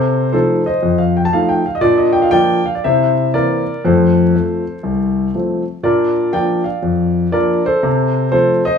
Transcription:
Already playing: C3 A4 C5
0.33 F3 A3 D#4 A4 C5
0.66 C5 D#5
0.83 F2
0.98 F5
1.17 G5
1.25 A5
1.33 F3 A3 D#4 F5
1.49 G5
1.66 F5
1.75 D#5
1.81 A#2 D4 D5
1.98 D#5
2.13 G5
2.22 F5
2.31 F3 A#3 D4 D5 G5
2.66 F5
2.75 D5
2.84 C3 E4 C5 E5
3.34 E3 A#3 C4 A#4 D5
3.85 F2 A3 A4 C5
4.35 F3 A3 C4
4.83 C2
5.35 F3 A3 C4
5.83 A#2 D4 A#4 D5
6.33 F3 A#3 D4 D5 G5
6.64 D5 F5
6.83 F2
7.32 F3 A#3 D4 A#4 D5
7.66 A4 C5
7.83 C3
8.32 F3 A3 C4 A4 C5
8.65 C5 D#5

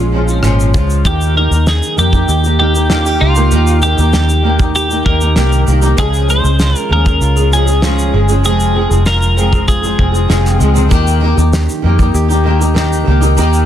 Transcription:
Already playing: A#1 F3 G#3 C#4 F4
0.00 G#3
0.12 F3 G#3 C#4 F4
0.28 shaker
0.43 G#1 A#2 F3 G#3 C#4 F4, cross-stick, shaker
0.60 shaker
0.74 C#2 F3 G#3 C#4 F4, kick, shaker
0.90 shaker
1.05 D#2 D#3 A#3 D#4 G4, kick, shaker
1.21 shaker
1.35 D#3 A#3 D#4 G4 A#4
1.51 D#2 A#3 D#4, shaker
1.67 G#4, snare, shaker
1.83 shaker
1.96 F2 D#3 A#3 D#4 G4, shaker
2.12 A#3 D#4 G4, kick, shaker
2.28 D#2 G4, shaker
2.43 A#3 D#4 G4, shaker
2.59 D#3 A#3 D#4 G4
2.73 A#3 D#4 G4, shaker
2.89 D#3 A#3 D#4 F4 G4, snare, shaker
3.06 G4, shaker
3.20 C#2 D#3 A#3 D#4 F4 G4
3.35 D#3 A#3 D#4 G4, shaker
3.51 D#2 D#3 A#3 D#4 G4, shaker
3.67 shaker
3.82 D#3 A#3 D#4 G4, shaker
3.97 D#2 A#3 D#4 G4, shaker
4.13 G4, snare, shaker
4.29 shaker
4.43 D#3 A#3 D#4 G4
4.58 A#3 D#4 G4, kick, shaker
4.75 G4, shaker
4.88 A#3 D#4 G4, shaker
5.05 D#2 D#3 A#3 D#4 G4 A#4, kick
5.21 A#3 D#4 G4, shaker
5.35 C2 D#3 A#3 D#4 G4, snare, shaker
5.52 shaker
5.66 C2 D#3 A#3 D#4 G4, shaker
5.81 D#3 A#3 D#4 G4, shaker
5.97 C#2 C#3 F3 G#3 C#4 G#4, kick, shaker
6.14 shaker
6.28 F3 G#3 C#4 G#4 C5, shaker
6.42 C#2 G#3 C#4 G#4, shaker
6.60 F4, snare, shaker
6.76 A#4, shaker
6.89 D#2 F3 G#3 C#4 G#4 A#4
7.05 G#3 C#4 G#4, kick, shaker
7.21 C#2 F4, shaker
7.36 G#3 C#4 G#4, shaker
7.51 F3 G#3 C#4 G#4, shaker
7.66 G#3 C#4 G#4, shaker
7.82 C#3 F3 G#3 C#4 F4 G#4, snare, shaker
7.99 shaker
8.12 G1 F3 G#3 C#4 G#4
8.29 C#3 F3 G#3 C#4 G#4, shaker
8.43 F1 F2 C3 F3 G#3 C4 G#4, shaker
8.60 shaker
8.75 F3 G#3 C4 G#4
8.89 F1 F3 G#3 C4 G#4, shaker
9.06 F4 A#4, snare, shaker
9.22 shaker
9.36 F3 G#3 C4 G#4, shaker
9.51 F3 G#3 C4 G#4, kick, shaker
9.68 F4 G#4, kick, shaker
9.82 F3 G#3 C4 G#4, shaker
9.97 F1 F3 G#3 C4 G#4, kick
10.12 F3 G#3 C4 G#4, shaker
10.28 F1 F2 C3 F3 G#3 C4 F4 G#4, snare, shaker
10.46 snare, shaker
10.59 C#2 F3 G#3 C4 G#4, shaker
10.74 F2 C3 F3 G#3 C4 G#4, shaker
10.89 D#2 D#3 A#3 D#4 G4, kick, shaker
11.07 shaker
11.20 D#3 A#3 D#4 G4
11.36 D#2 A#3 D#4 G4, shaker
11.53 G4, snare, shaker
11.69 shaker
11.82 F2 D#3 A#3 D#4 G4
11.98 A#3 D#4 G4, kick, shaker
12.14 D#2 G4, shaker
12.28 A#3 D#4 G4, shaker
12.44 D#3 A#3 D#4 G4
12.59 A#3 D#4 G4, shaker
12.74 D#3 A#3 D#4 G4, snare, shaker
12.93 shaker
13.05 C#2 D#3 A#3 D#4 G4
13.21 D#3 A#3 D#4 G4, shaker
13.37 D#2 D#3 A#3 D#4 G4, shaker
13.53 shaker

